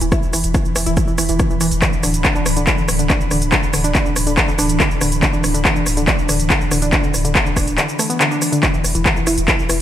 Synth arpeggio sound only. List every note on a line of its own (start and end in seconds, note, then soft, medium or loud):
0.01 0.06 E3 medium
0.12 0.16 E4 medium
0.33 0.38 E3 medium
0.54 0.59 E3 medium
0.76 0.80 E3 medium
0.86 0.91 E4 medium
1.08 1.12 E3 medium
1.18 1.23 E3 medium
1.29 1.33 E3 medium
1.50 1.57 E3 medium
1.61 1.67 E3 loud
1.82 1.87 D3 medium
2.03 2.08 D3 medium
2.25 2.29 D3 medium
2.35 2.40 D4 medium
2.57 2.61 D3 medium
2.78 2.82 D3 medium
2.99 3.04 D3 medium
3.10 3.14 D4 medium
3.31 3.35 D3 medium
3.52 3.57 D3 medium
3.74 3.78 D3 medium
3.84 3.89 D4 medium
4.06 4.10 D3 medium
4.27 4.31 D3 medium
4.48 4.52 D3 medium
4.58 4.63 D4 medium
4.80 4.84 D3 medium
5.01 5.06 D3 medium
5.22 5.27 D3 medium
5.33 5.37 D4 medium
5.54 5.59 D3 medium
5.76 5.80 D3 medium
5.97 6.01 D3 medium
6.08 6.12 D4 medium
6.29 6.33 D3 medium
6.50 6.55 D3 medium
6.71 6.76 D3 medium
6.82 6.87 D4 medium
7.03 7.08 D3 medium
7.25 7.29 D3 medium
7.46 7.50 D3 medium
7.57 7.61 D4 medium
7.78 7.82 D3 medium
7.99 8.02 A3 medium
8.10 8.12 B3 medium
8.20 8.25 D3 medium
8.31 8.35 D4 medium
8.52 8.59 D3 loud
8.74 8.78 E3 medium
8.95 8.99 E3 medium
9.16 9.21 E3 medium
9.27 9.31 E4 medium
9.48 9.52 E3 medium
9.69 9.74 E3 medium